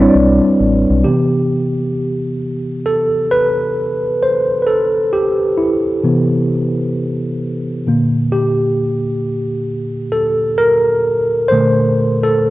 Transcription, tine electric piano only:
0, 0, Header, 1, 2, 480
1, 0, Start_track
1, 0, Tempo, 909091
1, 557, Time_signature, 4, 2, 24, 8
1, 6601, End_track
2, 0, Start_track
2, 0, Title_t, "Tine electric piano"
2, 0, Program_c, 0, 4
2, 0, Control_c, 0, 64, 127
2, 0, Note_on_c, 0, 55, 80
2, 0, Note_on_c, 0, 60, 73
2, 0, Note_on_c, 0, 62, 82
2, 0, Note_on_c, 0, 64, 69
2, 0, Note_on_c, 0, 71, 92
2, 1, Note_off_c, 0, 62, 0
2, 1, Note_on_c, 0, 62, 74
2, 7, Note_off_c, 0, 64, 0
2, 7, Note_on_c, 0, 64, 73
2, 13, Note_on_c, 0, 73, 68
2, 48, Note_on_c, 0, 74, 86
2, 396, Note_off_c, 0, 55, 0
2, 400, Note_off_c, 0, 60, 0
2, 403, Note_off_c, 0, 62, 0
2, 406, Note_off_c, 0, 64, 0
2, 426, Note_off_c, 0, 74, 0
2, 550, Note_on_c, 0, 67, 74
2, 554, Note_on_c, 0, 48, 49
2, 558, Note_on_c, 0, 52, 42
2, 562, Note_on_c, 0, 59, 58
2, 564, Note_off_c, 0, 71, 0
2, 564, Control_c, 0, 64, 0
2, 565, Note_off_c, 0, 73, 0
2, 646, Control_c, 0, 64, 127
2, 902, Note_off_c, 0, 48, 0
2, 904, Note_off_c, 0, 52, 0
2, 906, Note_off_c, 0, 59, 0
2, 1509, Note_on_c, 0, 69, 93
2, 1542, Note_off_c, 0, 67, 0
2, 1618, Note_off_c, 0, 69, 0
2, 1749, Note_on_c, 0, 71, 90
2, 2231, Note_on_c, 0, 72, 83
2, 2247, Note_off_c, 0, 71, 0
2, 2433, Note_off_c, 0, 72, 0
2, 2441, Note_on_c, 0, 71, 60
2, 2464, Note_on_c, 0, 69, 88
2, 2472, Note_off_c, 0, 71, 0
2, 2693, Note_off_c, 0, 69, 0
2, 2708, Note_on_c, 0, 67, 85
2, 2944, Note_on_c, 0, 64, 69
2, 2959, Note_off_c, 0, 67, 0
2, 3186, Note_on_c, 0, 48, 47
2, 3190, Note_on_c, 0, 52, 49
2, 3192, Note_on_c, 0, 59, 60
2, 3649, Note_off_c, 0, 64, 0
2, 4130, Note_off_c, 0, 48, 0
2, 4132, Note_off_c, 0, 52, 0
2, 4133, Note_off_c, 0, 59, 0
2, 4154, Note_on_c, 0, 46, 46
2, 4158, Note_on_c, 0, 50, 46
2, 4161, Note_on_c, 0, 58, 60
2, 4163, Control_c, 0, 64, 0
2, 4263, Control_c, 0, 64, 127
2, 4393, Note_on_c, 0, 67, 81
2, 5343, Note_on_c, 0, 69, 90
2, 5384, Note_off_c, 0, 67, 0
2, 5454, Note_off_c, 0, 69, 0
2, 5585, Note_on_c, 0, 70, 95
2, 6050, Note_off_c, 0, 70, 0
2, 6054, Note_off_c, 0, 46, 0
2, 6056, Note_off_c, 0, 50, 0
2, 6058, Note_off_c, 0, 58, 0
2, 6063, Note_on_c, 0, 72, 98
2, 6078, Note_on_c, 0, 46, 49
2, 6081, Note_on_c, 0, 50, 46
2, 6083, Note_on_c, 0, 57, 53
2, 6461, Note_on_c, 0, 69, 88
2, 6478, Note_off_c, 0, 72, 0
2, 6601, Note_off_c, 0, 46, 0
2, 6601, Note_off_c, 0, 50, 0
2, 6601, Note_off_c, 0, 57, 0
2, 6601, Note_off_c, 0, 69, 0
2, 6601, End_track
0, 0, End_of_file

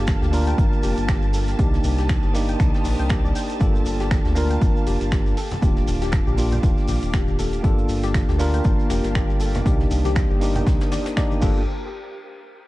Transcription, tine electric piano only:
0, 0, Header, 1, 2, 480
1, 0, Start_track
1, 0, Key_signature, -2, "minor"
1, 0, Tempo, 504202
1, 1514, Time_signature, 4, 2, 24, 8
1, 12068, End_track
2, 0, Start_track
2, 0, Title_t, "Tine electric piano"
2, 0, Program_c, 0, 4
2, 0, Note_on_c, 0, 58, 80
2, 0, Note_on_c, 0, 62, 78
2, 0, Note_on_c, 0, 65, 75
2, 0, Note_on_c, 0, 69, 97
2, 283, Note_off_c, 0, 58, 0
2, 287, Note_off_c, 0, 62, 0
2, 291, Note_off_c, 0, 65, 0
2, 295, Note_off_c, 0, 69, 0
2, 302, Note_on_c, 0, 58, 97
2, 310, Note_on_c, 0, 62, 91
2, 317, Note_on_c, 0, 65, 90
2, 325, Note_on_c, 0, 70, 107
2, 1483, Note_off_c, 0, 58, 0
2, 1487, Note_off_c, 0, 62, 0
2, 1491, Note_off_c, 0, 65, 0
2, 1494, Note_off_c, 0, 70, 0
2, 1502, Note_on_c, 0, 58, 81
2, 1510, Note_on_c, 0, 62, 72
2, 1518, Note_on_c, 0, 63, 76
2, 1525, Note_on_c, 0, 67, 91
2, 2203, Note_off_c, 0, 58, 0
2, 2207, Note_off_c, 0, 62, 0
2, 2211, Note_off_c, 0, 63, 0
2, 2214, Note_off_c, 0, 67, 0
2, 2223, Note_on_c, 0, 58, 90
2, 2230, Note_on_c, 0, 62, 79
2, 2238, Note_on_c, 0, 63, 85
2, 2246, Note_on_c, 0, 67, 97
2, 3403, Note_off_c, 0, 58, 0
2, 3407, Note_off_c, 0, 62, 0
2, 3411, Note_off_c, 0, 63, 0
2, 3415, Note_off_c, 0, 67, 0
2, 3423, Note_on_c, 0, 58, 80
2, 3430, Note_on_c, 0, 62, 77
2, 3438, Note_on_c, 0, 65, 75
2, 3445, Note_on_c, 0, 69, 93
2, 4123, Note_off_c, 0, 58, 0
2, 4127, Note_off_c, 0, 62, 0
2, 4131, Note_off_c, 0, 65, 0
2, 4135, Note_off_c, 0, 69, 0
2, 4143, Note_on_c, 0, 58, 101
2, 4150, Note_on_c, 0, 62, 93
2, 4158, Note_on_c, 0, 65, 91
2, 4165, Note_on_c, 0, 70, 109
2, 5096, Note_off_c, 0, 58, 0
2, 5100, Note_off_c, 0, 62, 0
2, 5103, Note_off_c, 0, 65, 0
2, 5107, Note_off_c, 0, 70, 0
2, 5343, Note_on_c, 0, 58, 82
2, 5350, Note_on_c, 0, 62, 74
2, 5358, Note_on_c, 0, 65, 77
2, 5365, Note_on_c, 0, 67, 94
2, 6043, Note_off_c, 0, 58, 0
2, 6047, Note_off_c, 0, 62, 0
2, 6051, Note_off_c, 0, 65, 0
2, 6055, Note_off_c, 0, 67, 0
2, 6063, Note_on_c, 0, 58, 88
2, 6070, Note_on_c, 0, 62, 79
2, 6078, Note_on_c, 0, 65, 83
2, 6085, Note_on_c, 0, 67, 93
2, 7243, Note_off_c, 0, 58, 0
2, 7247, Note_off_c, 0, 62, 0
2, 7251, Note_off_c, 0, 65, 0
2, 7255, Note_off_c, 0, 67, 0
2, 7263, Note_on_c, 0, 58, 84
2, 7270, Note_on_c, 0, 62, 77
2, 7278, Note_on_c, 0, 65, 74
2, 7286, Note_on_c, 0, 69, 98
2, 7963, Note_off_c, 0, 58, 0
2, 7967, Note_off_c, 0, 62, 0
2, 7971, Note_off_c, 0, 65, 0
2, 7975, Note_off_c, 0, 69, 0
2, 7983, Note_on_c, 0, 58, 98
2, 7990, Note_on_c, 0, 62, 93
2, 7998, Note_on_c, 0, 65, 91
2, 8005, Note_on_c, 0, 70, 110
2, 9163, Note_off_c, 0, 58, 0
2, 9167, Note_off_c, 0, 62, 0
2, 9171, Note_off_c, 0, 65, 0
2, 9175, Note_off_c, 0, 70, 0
2, 9183, Note_on_c, 0, 58, 88
2, 9190, Note_on_c, 0, 62, 75
2, 9198, Note_on_c, 0, 63, 78
2, 9205, Note_on_c, 0, 67, 92
2, 9883, Note_off_c, 0, 58, 0
2, 9887, Note_off_c, 0, 62, 0
2, 9891, Note_off_c, 0, 63, 0
2, 9895, Note_off_c, 0, 67, 0
2, 9903, Note_on_c, 0, 58, 86
2, 9910, Note_on_c, 0, 62, 85
2, 9918, Note_on_c, 0, 63, 80
2, 9925, Note_on_c, 0, 67, 95
2, 10607, Note_off_c, 0, 58, 0
2, 10611, Note_off_c, 0, 62, 0
2, 10615, Note_off_c, 0, 63, 0
2, 10619, Note_off_c, 0, 67, 0
2, 10628, Note_on_c, 0, 58, 95
2, 10632, Note_on_c, 0, 62, 90
2, 10636, Note_on_c, 0, 63, 85
2, 10640, Note_on_c, 0, 67, 103
2, 10845, Note_off_c, 0, 58, 0
2, 10857, Note_off_c, 0, 62, 0
2, 10857, Note_on_c, 0, 58, 88
2, 10868, Note_on_c, 0, 62, 82
2, 10875, Note_off_c, 0, 63, 0
2, 10877, Note_off_c, 0, 67, 0
2, 10879, Note_on_c, 0, 65, 82
2, 10891, Note_on_c, 0, 69, 97
2, 11049, Note_off_c, 0, 58, 0
2, 11055, Note_off_c, 0, 62, 0
2, 11061, Note_off_c, 0, 65, 0
2, 11067, Note_off_c, 0, 69, 0
2, 12068, End_track
0, 0, End_of_file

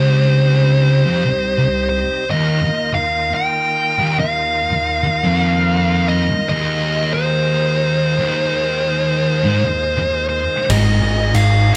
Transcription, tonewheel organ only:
0, 0, Header, 1, 2, 480
1, 0, Start_track
1, 0, Tempo, 1050788
1, 1050, Time_signature, 4, 2, 24, 8
1, 5375, End_track
2, 0, Start_track
2, 0, Title_t, "Tonewheel organ"
2, 0, Program_c, 0, 16
2, 0, Note_on_c, 0, 48, 69
2, 0, Note_on_c, 0, 55, 62
2, 0, Note_on_c, 0, 63, 72
2, 1028, Note_off_c, 0, 55, 0
2, 1029, Note_off_c, 0, 48, 0
2, 1030, Note_off_c, 0, 63, 0
2, 1059, Note_on_c, 0, 58, 64
2, 1059, Note_on_c, 0, 65, 78
2, 1060, Note_on_c, 0, 51, 72
2, 2955, Note_off_c, 0, 58, 0
2, 2973, Note_on_c, 0, 56, 68
2, 4875, Note_off_c, 0, 51, 0
2, 4875, Note_off_c, 0, 65, 0
2, 4887, Note_on_c, 0, 63, 66
2, 4889, Note_on_c, 0, 70, 71
2, 5375, Note_off_c, 0, 56, 0
2, 5375, Note_off_c, 0, 63, 0
2, 5375, Note_off_c, 0, 70, 0
2, 5375, End_track
0, 0, End_of_file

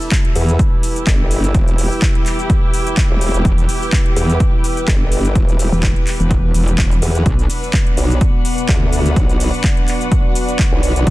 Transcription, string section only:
0, 0, Header, 1, 2, 480
1, 0, Start_track
1, 0, Key_signature, 1, "minor"
1, 0, Tempo, 476190
1, 1557, Time_signature, 4, 2, 24, 8
1, 11192, End_track
2, 0, Start_track
2, 0, Title_t, "String section"
2, 0, Program_c, 0, 48
2, 0, Note_on_c, 0, 62, 91
2, 0, Note_on_c, 0, 64, 99
2, 0, Note_on_c, 0, 67, 97
2, 0, Note_on_c, 0, 69, 80
2, 0, Note_on_c, 0, 76, 87
2, 69, Note_on_c, 0, 71, 92
2, 349, Note_off_c, 0, 62, 0
2, 425, Note_off_c, 0, 76, 0
2, 901, Note_on_c, 0, 79, 81
2, 1165, Note_off_c, 0, 69, 0
2, 7316, Note_on_c, 0, 62, 80
2, 7317, Note_off_c, 0, 79, 0
2, 7318, Note_off_c, 0, 67, 0
2, 7545, Note_on_c, 0, 78, 87
2, 7746, Note_on_c, 0, 66, 82
2, 7932, Note_off_c, 0, 64, 0
2, 11192, Note_off_c, 0, 62, 0
2, 11192, Note_off_c, 0, 66, 0
2, 11192, Note_off_c, 0, 71, 0
2, 11192, Note_off_c, 0, 78, 0
2, 11192, End_track
0, 0, End_of_file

